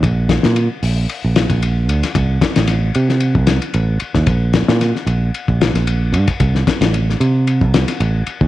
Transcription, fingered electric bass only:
X:1
M:4/4
L:1/16
Q:"Swing 16ths" 1/4=113
K:Cdor
V:1 name="Fingered electric bass" clef=bass
B,,,3 B,,2 z B,,,2 z B,,,2 B,,,3 D,, z | C,,2 z A,,,3 C,3 C,,2 z A,,,2 z E,, | B,,,3 B,,2 z B,,,2 z B,,,2 B,,,3 G,, z | C,,2 z A,,,3 C,3 C,,2 z A,,,2 z E,, |]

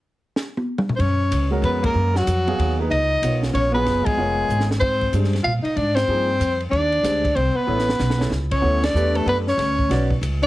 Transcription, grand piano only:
X:1
M:3/4
L:1/8
Q:"Swing" 1/4=189
K:F#
V:1 name="Grand piano"
z6 | z3 [G,CFA]3 | z3 [F,B,Ge]2 [A,DGB] | z2 [B,EAc]3 [F,B,EG]- |
[F,B,EG]2 [B,EAc]3 z | z2 [G,=D=G^B] z3 | z2 [E,A,DG] z3 | z2 [G,=D=G^B] z3 |
[B,=E=Ac] z2 [B,EAc] z2 | [K:D] [B,EAc] z [A,DGB]3 z | z2 [CFBd] z3 |]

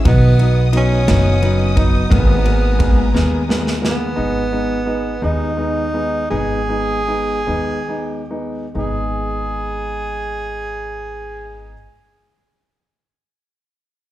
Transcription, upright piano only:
X:1
M:6/8
L:1/8
Q:3/8=54
K:G#m
V:1 name="Upright piano"
[F,B,D] [F,B,D] [F,B,D] [F,B,D] [F,B,D] [F,B,D] | [G,A,B,] [G,A,B,] [G,A,B,] [G,A,B,] [G,A,B,] [G,A,B,] | [G,B,D] [G,B,D] [G,B,D] [G,B,D] [G,B,D] [G,B,D] | [G,B,D] [G,B,D] [G,B,D] [G,B,D] [G,B,D] [G,B,D] |
[G,B,D]6- | [G,B,D]6 |]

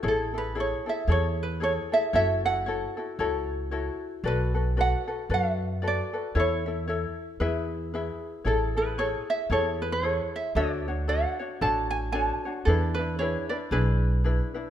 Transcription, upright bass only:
X:1
M:4/4
L:1/8
Q:"Swing" 1/4=114
K:A
V:1 name="Upright bass" clef=bass
A,,,4 E,,4 | F,,,4 C,,4 | B,,,4 F,,4 | E,,4 E,,4 |
A,,,4 E,,4 | D,,4 A,,,4 | E,,4 B,,,4 |]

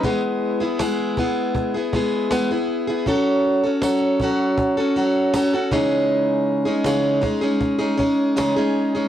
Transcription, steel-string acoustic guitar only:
X:1
M:4/4
L:1/16
Q:1/4=79
K:E
V:1 name="Steel-string acoustic guitar"
[E,G,B,EG]3 [B,EG] [E,G,B,EG]2 [G,B,EG]3 [B,EG] [G,B,EG]2 [E,G,B,EG] [B,EG]2 [B,EG] | [F,CFA]3 [CFA] [F,CFA]2 [F,CFA]3 [CFA] [F,CFA]2 [F,CFA] [CFA] [C,E,G,CDG]2- | [C,E,G,CDG]3 [G,CDG] [C,E,G,CDG]2 [G,CDG] [G,CDG]2 [G,CDG] [G,CDG]2 [C,E,G,CDG] [G,CDG]2 [G,CDG] |]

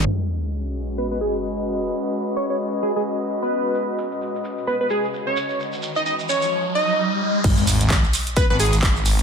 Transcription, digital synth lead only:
X:1
M:4/4
L:1/16
Q:"Swing 16ths" 1/4=130
K:G#m
V:1 name="Digital synth lead"
z8 B B G z4 z | z4 c c z2 G G z3 B3- | B3 z4 z B B G z2 c3 | z3 d d z c3 z d6 |
z8 B B G z4 z |]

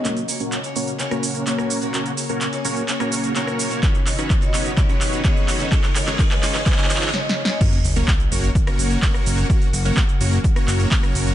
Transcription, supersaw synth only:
X:1
M:4/4
L:1/16
Q:1/4=127
K:F#
V:1 name="Supersaw synth"
[A,CFAc]2 z [A,CFAc]2 z [A,CFAc]2 z [A,CFAc]3 [A,CFAc]4 | [A,CFAc]2 z [A,CFAc]2 z [A,CFAc]2 z [A,CFAc]3 [A,CFAc]4 | z3 [CDFBc]2 z [CDFBc]2 z [CDFBc]3 B4 | G2 z [CDEGc]2 z [CDEGc]2 z [CDEGc]3 z4 |
[A,CFAc]2 z [A,CFAc]2 z [A,CFAc]2 z [A,CFAc]3 [A,CFAc]4 | [A,F]2 z [A,CFAc]2 z [A,CFAc]2 z [A,CFAc]3 [A,Cc]4 |]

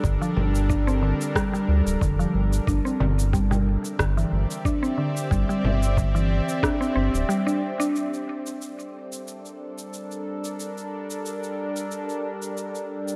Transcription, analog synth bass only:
X:1
M:4/4
L:1/16
Q:"Swing 16ths" 1/4=91
K:Cmix
V:1 name="Analog synth bass" clef=bass
G,,, z G,,,4- G,,, z3 D,, D,,, F,,,2 G,,,2 | G,,, z G,,,4- G,,, z G,,,2 G,,, z4 z | G,,, z G,,,4- G,,, z3 G,,, D,,, z4 | z16 |
z16 |]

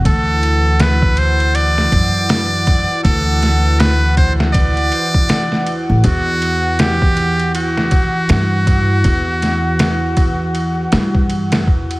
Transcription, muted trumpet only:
X:1
M:4/4
L:1/8
Q:"Swing 16ths" 1/4=80
K:Em
V:1 name="Muted trumpet"
A2 B c d4 | A2 B c d3 z | F2 G2 F4- | F6 z2 |]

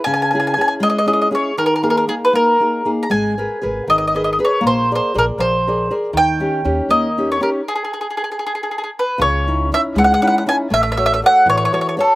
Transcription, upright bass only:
X:1
M:6/8
L:1/8
Q:3/8=79
K:D#phr
V:1 name="Upright bass" clef=bass
z6 | z6 | G,,,2 G,,, G,,,3 | A,,,2 A,,, A,,,3 |
D,,2 D,, D,,3 | z6 | [K:C#m] C,,3 C,, z2 | A,,,3 A,,, z2 |]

